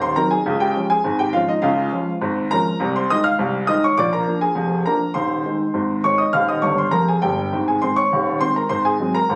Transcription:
Already playing: D#1 D#2
0.02 C5 C6
0.16 F#3 C4 D#4 A#4 A#5
0.31 G#4 G#5
0.46 C#2 C#3
0.60 G4 G5
0.76 F3 G#3 C#4
0.90 G#4 G#5
1.04 G#1 G#2
1.19 G4 G5
1.33 F3 G#3 C#4 F4 F5
1.48 D#4 D#5
1.62 C#2 C#3 F4 F5
1.92 F3 G#3 C#4
2.21 G#1 G#2
2.51 F3 G#3 C#4 A#4 A#5
2.80 C2 C3
2.96 C5 C6
3.10 D#3 G#3 D#4 D#5 D#6
3.24 F5 F6
3.39 C2 C3
3.67 D#3 G#3 D#4 D#5 D#6
3.84 C#5 C#6
3.98 A#1 A#2 D5 D6
4.13 A#4 A#5
4.28 F3 A#3 D4
4.41 G#4 G#5
4.55 F1 F2
4.86 F3 A#3 D4 A#4 A#5
5.14 D#1 D#2 C5 C6
5.45 D#3 G#3 D#4
5.74 G#1 G#2
6.04 D#3 G#3 D#4 C#5 C#6
6.18 D#5 D#6
6.33 D#1 D#2 F5 F6
6.48 D#5 D#6
6.62 G1 G2 C#5 C#6
6.78 C5 C6
6.91 F1 F2 A#4 A#5
7.08 G#4 G#5
7.22 G1 G2 G4 G5
7.52 G#1 G#2
7.68 G#4 G#5
7.82 D#3 G#3 C4 C5 C6
7.96 C#5 C#6
8.12 D#1 D#2
8.41 D#3 G#3 C4 C5 C6
8.56 A#4 A#5
8.69 G#1 G#2 C5 C6
8.85 G#4 G#5
9.00 F#3 G#3 C4
9.15 A#4 A#5
9.29 D#1 D#2

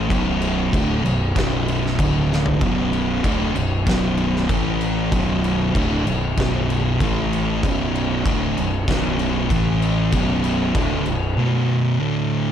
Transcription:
0.09 B0 B1 F#2 B2, kick, crash
0.42 crash
0.72 D1 D2 A2 D3, kick, crash
1.03 B0 B1 F#2, crash
1.35 B0 B1 F#2 B2, kick, snare, crash
1.68 crash
1.87 snare
1.99 D1 D2 A2 D3, kick, crash
2.33 snare
2.46 floor tom
2.61 B0 B1 F#2 B2, kick, crash
2.93 crash
3.24 D1 D2 A2 D3, kick, crash
3.55 B0 B1 F#2, crash
3.86 B0 B1 F#2 B2, kick, snare, crash
4.18 crash
4.36 snare
4.49 A1 A2 E3 A3, kick, crash
4.81 crash
5.12 B0 B1 F#2 B2, kick, crash
5.44 crash
5.74 D1 D2 A2 D3, kick, crash
6.06 B0 B1 F#2, crash
6.38 B0 B1 F#2 B2, kick, snare, crash
6.70 crash
7.00 A1 A2 E3 A3, kick, crash
7.33 crash
7.63 B0 B1 F#2 B2, kick, crash
7.95 crash
8.26 D1 D2 A2 D3, kick, crash
8.58 B0 B1 F#2, crash
8.88 B0 B1 F#2 B2, kick, snare, crash
9.19 crash
9.50 A1 A2 E3 A3, kick, crash
9.82 crash
10.12 B0 B1 F#2 B2, kick, crash
10.44 crash
10.75 D1 D2 A2 D3, kick, crash
11.06 B0 B1 F#2, crash
11.37 B1 F#2 B2
11.99 D2 A2 D3

